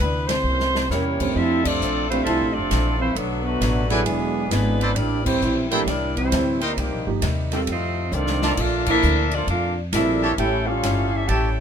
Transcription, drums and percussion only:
0.29 snare medium
0.29 ride medium
0.60 snare medium
0.75 snare medium
0.91 snare soft
0.91 hi-hat pedal medium
1.20 kick medium
1.20 crash medium
1.36 kick soft
1.65 kick medium
1.65 crash medium
1.82 hi-hat pedal medium
2.12 ride soft
2.26 kick soft
2.26 ride medium
2.71 kick soft
2.71 snare medium
2.71 hi-hat pedal medium
2.71 ride medium
3.16 kick soft
3.16 ride medium
3.61 kick soft
3.61 snare medium
3.61 hi-hat pedal soft
3.61 ride medium
3.90 ride soft
4.06 kick soft
4.06 ride medium
4.51 kick soft
4.51 snare medium
4.51 hi-hat pedal medium
4.51 ride medium
4.81 ride soft
4.96 kick soft
4.96 ride medium
5.26 kick medium
5.26 crash medium
5.42 hi-hat pedal medium
5.71 ride soft
5.87 kick soft
5.87 snare soft
5.87 ride medium
6.17 kick medium
6.17 ride soft
6.32 kick soft
6.32 snare medium
6.32 hi-hat pedal medium
6.32 ride medium
6.61 ride soft
6.77 kick soft
6.77 ride medium
7.22 kick soft
7.22 snare medium
7.22 hi-hat pedal medium
7.22 ride medium
7.52 snare soft
7.52 ride soft
7.67 kick soft
7.67 ride medium
8.12 hi-hat pedal medium
8.27 snare medium
8.42 snare medium
8.57 kick medium
8.57 crash medium
8.86 kick medium
8.86 crash medium
9.03 hi-hat pedal medium
9.31 ride soft
9.48 kick soft
9.48 ride medium
9.93 kick soft
9.93 snare medium
9.93 hi-hat pedal medium
9.93 ride medium
10.38 kick soft
10.38 ride medium
10.83 kick soft
10.83 snare medium
10.83 hi-hat pedal medium
10.83 ride medium
11.29 kick soft
11.29 ride medium

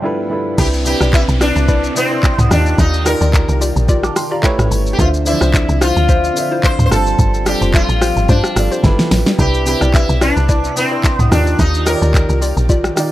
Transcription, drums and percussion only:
0.58 kick loud
0.58 crash loud
0.58 shaker medium
0.74 shaker medium
0.86 open hi-hat medium
0.86 shaker loud
1.01 cross-stick medium
1.01 shaker medium
1.13 kick loud
1.13 clap medium
1.13 shaker medium
1.28 shaker medium
1.41 cross-stick loud
1.41 open hi-hat medium
1.41 shaker medium
1.56 shaker soft
1.68 kick loud
1.68 shaker medium
1.84 shaker soft
1.96 open hi-hat medium
1.96 shaker loud
2.23 kick loud
2.23 clap medium
2.23 shaker medium
2.39 mid tom loud
2.39 shaker medium
2.51 cross-stick medium
2.51 open hi-hat medium
2.51 shaker loud
2.66 shaker soft
2.78 kick loud
2.78 shaker medium
2.94 shaker medium
3.06 cross-stick loud
3.06 open hi-hat medium
3.06 shaker loud
3.21 shaker medium
3.33 kick loud
3.33 clap loud
3.33 shaker medium
3.49 shaker medium
3.62 open hi-hat medium
3.62 shaker loud
3.76 shaker medium
3.89 kick loud
3.89 shaker medium
4.03 cross-stick medium
4.03 shaker medium
4.16 cross-stick medium
4.16 open hi-hat medium
4.16 shaker loud
4.44 kick loud
4.44 clap loud
4.44 shaker medium
4.59 cross-stick loud
4.59 mid tom medium
4.59 shaker medium
4.71 open hi-hat medium
4.71 shaker loud
4.86 shaker soft
4.99 kick loud
4.99 shaker medium
5.14 shaker medium
5.26 open hi-hat medium
5.26 shaker loud
5.41 cross-stick medium
5.41 shaker medium
5.54 kick loud
5.54 clap medium
5.54 shaker medium
5.69 shaker medium
5.81 cross-stick loud
5.81 open hi-hat medium
5.81 shaker medium
5.96 shaker soft
6.09 kick loud
6.09 shaker medium
6.24 shaker medium
6.37 open hi-hat medium
6.37 shaker loud
6.64 kick loud
6.64 clap loud
6.64 shaker medium
6.79 mid tom loud
6.79 shaker medium
6.91 cross-stick medium
6.91 open hi-hat medium
6.91 shaker loud
7.06 shaker soft
7.19 kick loud
7.19 shaker medium
7.34 shaker medium
7.46 cross-stick loud
7.46 open hi-hat medium
7.46 shaker loud
7.62 shaker medium
7.74 kick loud
7.74 clap medium
7.74 shaker medium
7.89 shaker medium
8.02 cross-stick loud
8.02 open hi-hat medium
8.02 shaker medium
8.17 shaker soft
8.29 kick loud
8.29 shaker medium
8.44 cross-stick loud
8.44 shaker medium
8.56 cross-stick loud
8.56 open hi-hat medium
8.56 shaker loud
8.72 shaker medium
8.84 kick loud
8.84 snare medium
8.84 shaker medium
8.99 snare medium
8.99 shaker medium
9.11 snare loud
9.11 open hi-hat medium
9.11 shaker loud
9.26 snare medium
9.26 shaker soft
9.39 kick loud
9.39 shaker medium
9.54 shaker medium
9.66 open hi-hat medium
9.66 shaker loud
9.81 cross-stick medium
9.81 shaker medium
9.94 kick loud
9.94 clap medium
9.94 shaker medium
10.09 shaker medium
10.21 cross-stick loud
10.21 open hi-hat medium
10.21 shaker loud
10.37 shaker soft
10.49 kick loud
10.49 shaker medium
10.64 shaker medium
10.77 open hi-hat medium
10.77 shaker loud
11.04 kick loud
11.04 clap loud
11.04 shaker medium
11.19 mid tom medium
11.19 shaker medium
11.32 cross-stick loud
11.32 open hi-hat medium
11.32 shaker loud
11.47 shaker soft
11.59 kick loud
11.59 shaker medium
11.74 shaker medium
11.86 cross-stick loud
11.86 open hi-hat medium
11.86 shaker loud
12.02 shaker medium
12.14 kick loud
12.14 clap medium
12.14 shaker medium
12.29 shaker medium
12.42 open hi-hat medium
12.42 shaker loud
12.57 shaker soft
12.69 kick loud
12.69 shaker medium
12.84 cross-stick loud
12.84 shaker medium
12.97 cross-stick loud
12.97 open hi-hat medium
12.97 shaker loud

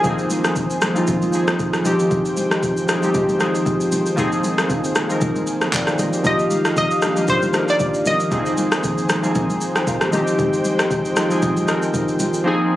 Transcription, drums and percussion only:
0.04 kick loud
0.04 shaker medium
0.19 shaker soft
0.30 high conga medium
0.30 shaker medium
0.44 cross-stick medium
0.44 shaker medium
0.56 kick medium
0.56 low conga medium
0.56 shaker medium
0.71 shaker medium
0.82 cross-stick loud
0.82 high conga soft
0.82 shaker medium
0.96 high conga medium
0.96 shaker medium
1.07 kick loud
1.07 low conga medium
1.07 shaker medium
1.22 high conga medium
1.22 shaker medium
1.33 shaker medium
1.48 cross-stick loud
1.48 shaker soft
1.59 kick medium
1.59 shaker medium
1.73 cross-stick medium
1.73 shaker soft
1.85 high conga medium
1.85 low conga medium
1.85 shaker medium
1.99 shaker medium
2.11 kick loud
2.11 shaker medium
2.25 shaker soft
2.37 high conga medium
2.37 shaker medium
2.51 cross-stick medium
2.51 shaker medium
2.63 kick medium
2.63 low conga medium
2.63 shaker medium
2.77 shaker medium
2.89 cross-stick loud
2.89 high conga soft
2.89 shaker medium
3.03 high conga medium
3.03 shaker medium
3.14 kick loud
3.14 low conga medium
3.14 shaker medium
3.29 high conga medium
3.29 shaker medium
3.40 cross-stick medium
3.40 shaker medium
3.55 shaker soft
3.66 kick loud
3.66 shaker medium
3.81 shaker medium
3.92 high conga medium
3.92 low conga medium
3.92 shaker loud
4.06 shaker medium
4.18 kick loud
4.18 shaker medium
4.32 shaker soft
4.44 high conga medium
4.44 shaker medium
4.58 cross-stick loud
4.58 shaker medium
4.70 kick medium
4.70 low conga medium
4.70 shaker medium
4.84 shaker medium
4.95 cross-stick loud
4.95 high conga soft
4.95 shaker medium
5.10 high conga medium
5.10 shaker medium
5.21 kick loud
5.21 low conga medium
5.21 shaker medium
5.36 high conga medium
5.36 shaker medium
5.47 shaker medium
5.61 cross-stick medium
5.61 shaker soft
5.73 kick loud
5.73 clap medium
5.73 shaker medium
5.87 cross-stick medium
5.87 shaker medium
5.99 high conga medium
5.99 low conga medium
5.99 shaker medium
6.13 shaker medium
6.25 kick loud
6.25 shaker medium
6.39 shaker soft
6.51 high conga medium
6.51 shaker medium
6.65 cross-stick loud
6.65 shaker medium
6.77 kick medium
6.77 low conga medium
6.77 shaker medium
6.91 shaker medium
7.02 cross-stick loud
7.02 high conga soft
7.02 shaker medium
7.16 high conga medium
7.16 shaker medium
7.28 kick loud
7.28 low conga medium
7.28 shaker medium
7.43 high conga medium
7.43 shaker medium
7.54 cross-stick medium
7.54 shaker medium
7.68 shaker soft
7.80 kick loud
7.80 shaker medium
7.94 shaker medium
8.06 high conga medium
8.06 low conga medium
8.06 shaker loud
8.20 shaker medium
8.32 kick loud
8.32 shaker medium
8.46 shaker soft
8.58 high conga medium
8.58 shaker medium
8.72 cross-stick loud
8.72 shaker medium
8.84 kick medium
8.84 low conga medium
8.84 shaker medium
8.98 shaker medium
9.09 cross-stick loud
9.09 high conga soft
9.09 shaker medium
9.24 high conga medium
9.24 shaker medium
9.35 kick loud
9.35 low conga medium
9.35 shaker medium
9.50 high conga medium
9.50 shaker medium
9.61 shaker medium
9.76 cross-stick medium
9.76 shaker soft
9.87 kick loud
9.87 shaker medium
10.01 cross-stick medium
10.01 shaker medium
10.13 high conga medium
10.13 low conga medium
10.13 shaker medium
10.27 shaker medium
10.39 kick loud
10.39 shaker medium
10.53 shaker soft
10.65 high conga medium
10.65 shaker medium
10.79 cross-stick loud
10.79 shaker medium
10.91 kick medium
10.91 low conga medium
10.91 shaker medium
11.05 shaker medium
11.16 cross-stick loud
11.16 high conga soft
11.16 shaker medium
11.31 high conga medium
11.31 shaker medium
11.42 kick loud
11.42 low conga medium
11.42 shaker medium
11.56 high conga medium
11.56 shaker medium
11.68 cross-stick medium
11.68 shaker medium
11.82 shaker soft
11.94 kick loud
11.94 shaker medium
12.08 shaker medium
12.20 high conga medium
12.20 low conga medium
12.20 shaker medium
12.34 shaker medium

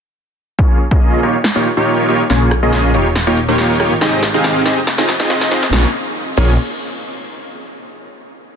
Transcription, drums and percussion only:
0.59 kick loud
0.91 kick loud
1.44 snare loud
2.30 snare soft
2.30 closed hi-hat medium
2.51 cross-stick medium
2.51 closed hi-hat medium
2.73 snare soft
2.73 closed hi-hat medium
2.94 closed hi-hat medium
3.15 snare medium
3.15 closed hi-hat medium
3.37 closed hi-hat medium
3.58 snare medium
3.58 closed hi-hat medium
3.70 closed hi-hat medium
3.75 closed hi-hat medium
3.80 cross-stick medium
3.80 closed hi-hat medium
4.01 snare medium
4.01 closed hi-hat medium
4.23 snare medium
4.23 closed hi-hat medium
4.44 snare medium
4.44 closed hi-hat medium
4.66 snare medium
4.66 closed hi-hat medium
4.87 snare medium
4.87 closed hi-hat medium
4.98 snare medium
5.09 snare medium
5.09 closed hi-hat medium
5.20 snare medium
5.30 snare loud
5.30 closed hi-hat medium
5.41 snare medium
5.41 closed hi-hat soft
5.46 closed hi-hat medium
5.51 snare loud
5.51 closed hi-hat medium
5.63 snare loud
5.73 snare medium
6.37 crash medium

